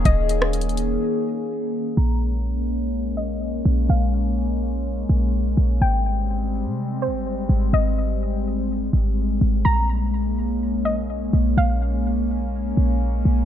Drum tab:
HH |x-----x-----x-x-x-x-----------------------------|------------------------------------------------|------------------------------------------------|------------------------------------------------|
SD |---------r--------------------------------------|------------------------------------------------|------------------------------------------------|------------------------------------------------|
BD |o-----------------------------------------------|------------------------------------------------|------------------------------------------------|------------------------------------------------|

HH |------------------------------------------------|------------------------------------------------|------------------------------------------------|
SD |------------------------------------------------|------------------------------------------------|------------------------------------------------|
BD |------------------------------------------------|------------------------------------------------|------------------------------------------------|